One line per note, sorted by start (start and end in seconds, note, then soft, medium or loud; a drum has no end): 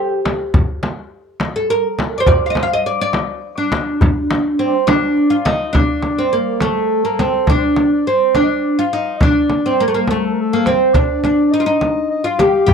0.00 0.68 G4 medium
0.25 darbuka tek medium
0.25 frame drum medium
0.54 frame drum medium
0.54 darbuka dum medium
0.83 darbuka tek medium
0.83 frame drum medium
1.40 darbuka tek medium
1.40 frame drum medium
1.56 1.70 A4 medium
1.70 2.17 A#4 medium
1.99 darbuka tek medium
1.99 frame drum medium
2.18 2.28 C5 medium
2.18 2.20 D5 medium
2.26 2.46 D5 medium
2.26 frame drum medium
2.26 darbuka dum medium
2.46 2.49 F5 medium
2.50 2.62 D#5 medium
2.55 darbuka tek medium
2.55 frame drum medium
2.63 2.73 F5 medium
2.73 2.85 D#5 medium
2.86 3.00 D5 medium
3.01 3.60 D5 loud
3.13 darbuka tek medium
3.13 frame drum medium
3.58 4.72 D4 medium
3.72 darbuka tek medium
3.72 frame drum medium
4.01 darbuka dum medium
4.01 frame drum medium
4.31 darbuka tek medium
4.31 frame drum medium
4.59 4.89 C4 medium
4.59 4.67 C5 medium
4.66 4.73 D5 medium
4.73 4.89 C5 medium
4.87 5.32 D4 medium
4.87 5.48 D5 medium
4.87 darbuka tek medium
4.87 frame drum medium
5.17 darbuka ka soft
5.30 5.46 F4 medium
5.45 5.72 D#4 medium
5.45 5.66 D#5 medium
5.45 darbuka tek medium
5.45 frame drum medium
5.68 5.75 D#5 medium
5.73 6.19 D4 medium
5.73 6.64 D5 medium
5.73 frame drum medium
6.03 frame drum medium
6.19 6.33 C4 medium
6.33 6.61 A#3 medium
6.60 7.04 A3 medium
6.60 7.52 A4 medium
6.60 frame drum medium
7.05 7.20 A#3 medium
7.19 7.49 C4 medium
7.19 frame drum medium
7.47 8.03 D4 medium
7.47 7.56 D5 medium
7.47 frame drum medium
7.57 7.63 C5 medium
7.62 7.91 D5 medium
7.76 frame drum medium
7.92 8.07 D5 medium
8.07 8.36 C4 medium
8.07 8.36 C5 medium
8.35 8.80 D4 medium
8.35 8.42 D5 medium
8.35 frame drum medium
8.43 8.49 D#5 medium
8.50 8.77 D5 medium
8.79 8.92 F4 medium
8.79 9.17 F5 medium
8.93 9.22 D#4 medium
9.16 9.23 D#5 medium
9.21 9.67 D4 medium
9.21 9.82 D5 medium
9.21 frame drum medium
9.50 frame drum medium
9.66 9.80 C4 medium
9.79 9.87 A#3 medium
9.79 9.92 A#4 medium
9.88 9.94 A3 medium
9.94 10.09 A#3 medium
9.94 10.09 A#4 medium
10.08 10.54 A3 medium
10.08 10.16 A4 medium
10.08 frame drum medium
10.17 10.25 A#4 medium
10.24 10.32 A4 medium
10.32 10.40 A#4 medium
10.40 10.67 A4 medium
10.53 10.67 A#3 medium
10.66 10.96 C4 medium
10.66 10.93 C5 medium
10.66 frame drum medium
10.94 11.23 D4 medium
10.94 11.22 D5 medium
10.94 frame drum medium
11.23 11.53 D4 medium
11.23 11.53 D5 medium
11.23 frame drum medium
11.51 11.60 D#4 medium
11.51 11.65 D#5 medium
11.60 11.66 F4 medium
11.66 12.24 D#4 medium
11.66 12.08 D#5 medium
11.81 frame drum medium
12.10 12.25 D#5 medium
12.24 12.39 F4 medium
12.24 12.69 F5 medium
12.39 12.65 G4 medium
12.39 frame drum medium
12.66 12.74 G4 loud
12.66 12.74 G5 medium
12.66 frame drum medium
12.66 darbuka dum medium